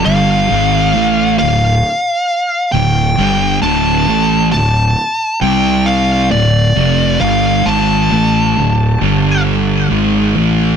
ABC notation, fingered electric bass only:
X:1
M:4/4
L:1/8
Q:1/4=67
K:Gm
V:1 name="Fingered electric bass" clef=bass
G,,, ^G,,, A,,, D,,, z2 D,,, =G,,, | D,,, A,,, D,,, z C,,2 D,,, F,,, | G,,, ^G,,, A,,, D,,, =G,,,2 ^G,,, A,,, |]